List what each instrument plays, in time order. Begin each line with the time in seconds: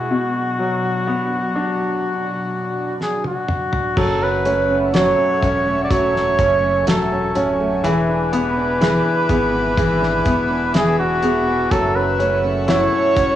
Already playing: analog synth pad B2, flugelhorn F#4
0.10 grand piano B2, analog synth pad F#3 D4 F#4
0.59 grand piano F#3
1.07 grand piano B3
1.55 grand piano D4
3.01 flugelhorn G#4, snare
3.24 flugelhorn F#4, high tom
3.49 mid tom
3.73 floor tom
3.97 sub bass F#1, nylon-string guitar F#2 F#4, grand piano F#3, analog synth pad A4 E5 F#5 C#6, flugelhorn A4, kick, crash
4.22 nylon-string guitar C#4, flugelhorn B4
4.45 nylon-string guitar A3, grand piano C#4, closed hi-hat
4.70 nylon-string guitar C#4
4.94 grand piano F#3, nylon-string guitar F#4, flugelhorn C#5, snare, closed hi-hat
5.18 nylon-string guitar C#4
5.42 sub bass E1, grand piano C#4, nylon-string guitar F#4, kick, closed hi-hat
5.66 nylon-string guitar A3
5.84 flugelhorn D5
5.90 nylon-string guitar F#2 F#4, grand piano F#3, flugelhorn C#5, analog synth pad G#5, kick, closed hi-hat
6.15 nylon-string guitar C#4, snare
6.39 sub bass F#1, nylon-string guitar A3, grand piano C#4, kick, closed hi-hat
6.64 nylon-string guitar C#4
6.87 sub bass E1, grand piano F#3, nylon-string guitar F#4, flugelhorn A4, snare, closed hi-hat
7.12 nylon-string guitar C#4
7.35 sub bass D1, grand piano C#4, nylon-string guitar F#4, closed hi-hat
7.60 nylon-string guitar A3
7.83 sub bass E1, grand piano E3, nylon-string guitar E3 G#4, analog synth pad B4 E5 D6, flugelhorn B4, closed hi-hat
8.09 nylon-string guitar D4
8.33 grand piano B3, nylon-string guitar B3, closed hi-hat
8.57 nylon-string guitar D4
8.81 grand piano E3, nylon-string guitar G#4, snare, closed hi-hat
9.05 nylon-string guitar D4
9.29 sub bass G#1, grand piano B3, nylon-string guitar G#4, kick, closed hi-hat
9.53 nylon-string guitar B3
9.77 grand piano E3, nylon-string guitar E3 G#4, kick, closed hi-hat
10.02 nylon-string guitar D4, snare
10.25 sub bass E1, grand piano B3, nylon-string guitar B3, kick, closed hi-hat
10.50 nylon-string guitar D4
10.74 grand piano E3, nylon-string guitar G#4, flugelhorn G#4, snare, closed hi-hat
10.99 nylon-string guitar D4, flugelhorn F#4
11.22 grand piano B3, nylon-string guitar G#4, closed hi-hat
11.47 nylon-string guitar B3
11.71 sub bass F#1, nylon-string guitar F#2 F#4, grand piano F#3, flugelhorn A4, analog synth pad A4 F#5 C#6, kick, closed hi-hat
11.96 nylon-string guitar C#4, flugelhorn B4
12.19 nylon-string guitar A3, grand piano C#4, closed hi-hat
12.44 nylon-string guitar C#4
12.68 grand piano E4, nylon-string guitar F#4, flugelhorn C#5, snare, closed hi-hat
12.93 nylon-string guitar C#4
13.16 sub bass E1, grand piano C#4, nylon-string guitar F#4, kick, closed hi-hat